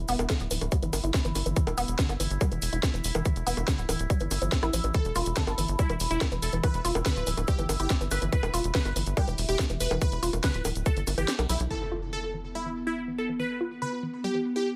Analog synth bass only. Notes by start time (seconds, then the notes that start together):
0.09 E1
0.19 E1
0.40 D1
0.51 D1
0.61 D1
0.83 G1
0.93 G1
1.04 G1
1.25 G1
1.35 G1
1.46 G1
1.67 E1
1.78 E1
1.88 E1
2.09 G1
2.20 G1
2.30 G1
2.52 E1
2.62 E1
2.73 E1
2.94 E1
3.04 E1
3.15 E1
3.36 E1
3.47 E1
3.57 E1
3.78 D1
3.89 D1
3.99 D1
4.21 G1
4.31 G1
4.42 G1
4.63 A1
4.73 A1
4.84 A1
5.05 E1
5.16 E1
5.26 E1
5.47 G1
5.58 G1
5.68 G1
5.90 E1
6.00 E1
6.11 E1
6.32 E1
6.42 E1
6.53 E1
6.74 E1
6.85 E1
6.95 E1
7.16 D1
7.27 D1
7.37 D1
7.59 G1
7.69 G1
7.80 G1
8.01 G1
8.11 G1
8.22 G1
8.43 E1
8.54 E1
8.64 E1
8.85 G1
8.96 G1
9.06 G1
9.28 E1
9.38 E1
9.49 E1
9.70 E1
9.80 E1
9.91 E1
10.12 E1
10.23 E1
10.33 E1
10.54 D1
10.65 D1
10.76 D1
10.97 G1
11.07 G1
11.18 G1
11.39 B1
11.49 B1
11.60 B1